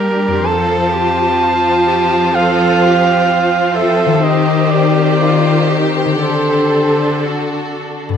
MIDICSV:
0, 0, Header, 1, 7, 480
1, 0, Start_track
1, 0, Key_signature, -1, "major"
1, 0, Tempo, 941915
1, 238, Time_signature, 4, 2, 24, 8
1, 2159, Tempo, 981997
1, 2639, Tempo, 1018676
1, 4031, End_track
2, 0, Start_track
2, 0, Title_t, "Cor anglais"
2, 0, Program_c, 0, 69
2, 0, Note_on_c, 0, 70, 60
2, 235, Note_on_c, 0, 81, 74
2, 242, Note_off_c, 0, 70, 0
2, 1197, Note_on_c, 0, 77, 74
2, 1205, Note_off_c, 0, 81, 0
2, 1909, Note_off_c, 0, 77, 0
2, 1912, Note_on_c, 0, 76, 61
2, 2160, Note_on_c, 0, 75, 65
2, 2167, Note_off_c, 0, 76, 0
2, 2388, Note_on_c, 0, 74, 65
2, 2395, Note_off_c, 0, 75, 0
2, 2973, Note_off_c, 0, 74, 0
2, 3112, Note_on_c, 0, 72, 51
2, 3579, Note_off_c, 0, 72, 0
2, 4031, End_track
3, 0, Start_track
3, 0, Title_t, "Violin section"
3, 0, Program_c, 1, 48
3, 0, Note_on_c, 1, 67, 44
3, 215, Note_off_c, 1, 67, 0
3, 233, Note_on_c, 1, 72, 49
3, 3096, Note_off_c, 1, 72, 0
3, 3113, Note_on_c, 1, 69, 44
3, 3961, Note_off_c, 1, 69, 0
3, 4031, End_track
4, 0, Start_track
4, 0, Title_t, "Cello section"
4, 0, Program_c, 2, 48
4, 0, Note_on_c, 2, 67, 49
4, 235, Note_on_c, 2, 69, 57
4, 240, Note_off_c, 2, 67, 0
4, 474, Note_on_c, 2, 67, 51
4, 478, Note_off_c, 2, 69, 0
4, 718, Note_off_c, 2, 67, 0
4, 721, Note_on_c, 2, 65, 51
4, 958, Note_on_c, 2, 67, 51
4, 959, Note_off_c, 2, 65, 0
4, 1195, Note_off_c, 2, 67, 0
4, 1197, Note_on_c, 2, 69, 53
4, 1428, Note_off_c, 2, 69, 0
4, 1435, Note_on_c, 2, 67, 53
4, 1671, Note_on_c, 2, 65, 53
4, 1673, Note_off_c, 2, 67, 0
4, 1913, Note_off_c, 2, 65, 0
4, 1915, Note_on_c, 2, 69, 55
4, 2158, Note_off_c, 2, 69, 0
4, 2159, Note_on_c, 2, 67, 59
4, 2629, Note_off_c, 2, 67, 0
4, 2636, Note_on_c, 2, 65, 49
4, 2873, Note_on_c, 2, 67, 44
4, 2875, Note_off_c, 2, 65, 0
4, 3116, Note_off_c, 2, 67, 0
4, 3120, Note_on_c, 2, 69, 42
4, 3842, Note_off_c, 2, 69, 0
4, 4031, End_track
5, 0, Start_track
5, 0, Title_t, "Harp"
5, 0, Program_c, 3, 46
5, 0, Note_on_c, 3, 43, 39
5, 0, Note_on_c, 3, 58, 33
5, 0, Note_on_c, 3, 62, 31
5, 0, Note_on_c, 3, 67, 33
5, 141, Note_on_c, 3, 41, 44
5, 159, Note_off_c, 3, 43, 0
5, 166, Note_on_c, 3, 60, 38
5, 182, Note_off_c, 3, 58, 0
5, 188, Note_on_c, 3, 65, 38
5, 203, Note_off_c, 3, 62, 0
5, 211, Note_on_c, 3, 72, 40
5, 227, Note_off_c, 3, 67, 0
5, 2068, Note_on_c, 3, 51, 46
5, 2084, Note_off_c, 3, 60, 0
5, 2090, Note_on_c, 3, 60, 39
5, 2112, Note_on_c, 3, 67, 40
5, 2128, Note_off_c, 3, 41, 0
5, 2129, Note_off_c, 3, 72, 0
5, 2135, Note_on_c, 3, 72, 37
5, 2152, Note_off_c, 3, 65, 0
5, 3031, Note_on_c, 3, 50, 37
5, 3053, Note_on_c, 3, 62, 30
5, 3073, Note_on_c, 3, 78, 33
5, 3095, Note_off_c, 3, 51, 0
5, 3095, Note_on_c, 3, 69, 30
5, 3116, Note_off_c, 3, 67, 0
5, 3950, Note_off_c, 3, 60, 0
5, 3991, Note_on_c, 3, 43, 45
5, 3992, Note_off_c, 3, 72, 0
5, 4006, Note_off_c, 3, 62, 0
5, 4012, Note_on_c, 3, 62, 39
5, 4031, Note_off_c, 3, 43, 0
5, 4031, Note_off_c, 3, 50, 0
5, 4031, Note_off_c, 3, 62, 0
5, 4031, Note_off_c, 3, 69, 0
5, 4031, Note_off_c, 3, 78, 0
5, 4031, End_track
6, 0, Start_track
6, 0, Title_t, "Violin section"
6, 0, Program_c, 4, 48
6, 0, Note_on_c, 4, 58, 45
6, 0, Note_on_c, 4, 62, 45
6, 238, Note_off_c, 4, 58, 0
6, 238, Note_off_c, 4, 62, 0
6, 240, Note_on_c, 4, 60, 58
6, 244, Note_on_c, 4, 65, 56
6, 2156, Note_on_c, 4, 67, 58
6, 2160, Note_off_c, 4, 65, 0
6, 3099, Note_off_c, 4, 60, 0
6, 3117, Note_on_c, 4, 62, 44
6, 3598, Note_on_c, 4, 66, 41
6, 3600, Note_off_c, 4, 67, 0
6, 3963, Note_off_c, 4, 62, 0
6, 3979, Note_off_c, 4, 66, 0
6, 4031, End_track
7, 0, Start_track
7, 0, Title_t, "Viola section"
7, 0, Program_c, 5, 48
7, 0, Note_on_c, 5, 55, 49
7, 217, Note_off_c, 5, 55, 0
7, 237, Note_on_c, 5, 53, 55
7, 2136, Note_off_c, 5, 53, 0
7, 2154, Note_on_c, 5, 51, 57
7, 3097, Note_off_c, 5, 51, 0
7, 3119, Note_on_c, 5, 50, 48
7, 3981, Note_off_c, 5, 50, 0
7, 4031, End_track
0, 0, End_of_file